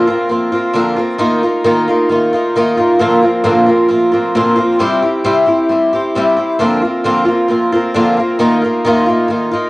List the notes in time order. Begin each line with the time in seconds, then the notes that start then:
0.07 A#3 C4 F4
0.29 F3 A#3 C4 F4
0.52 A#3 C4 F4
0.73 D3 F3 A#3 C4 F4
0.96 A#3 C4 F4
1.18 D#3 A#3 D#4 F4
1.43 A#3 D#4 F4
1.64 D#3 A#3 D#4 F4
1.88 A#3 D#4 F4
2.09 D#3 A#3 D#4 F4
2.33 A#3 D#4 F4
2.56 D#3 A#3 D#4 F4
2.77 A#3 D#4 F4
2.99 A#2 D3 F3 A#3 C4 F4
3.22 F3 A#3 C4 F4
3.44 A#2 D3 F3 A#3 C4 F4
3.66 F3 A#3 C4 F4
3.88 F3 A#3 C4 F4
4.12 F3 A#3 C4 F4
4.35 A#2 D3 F3 A#3 C4 F4
4.55 F3 A#3 C4 F4
4.79 C3 G3 C4 E4 G4
5.02 C4 E4 G4
5.24 C3 G3 C4 E4 G4
5.46 C4 E4 G4
5.69 G3 C4 E4 G4
5.93 C4 E4 G4
6.15 C3 G3 C4 E4 G4
6.37 C4 E4 G4
6.59 D3 F3 A#3 C4 F4
6.82 A#3 C4 F4
7.04 D3 F3 A#3 C4 F4
7.25 A#3 C4 F4
7.48 F3 A#3 C4 F4
7.72 A#3 C4 F4
7.94 D3 F3 A#3 C4 F4
8.17 A#3 C4 F4
8.39 D#3 A#3 D#4 F4
8.62 A#3 D#4 F4
8.85 D#3 A#3 D#4 F4
9.06 A#3 D#4 F4
9.28 D#3 A#3 D#4 F4
9.52 A#3 D#4 F4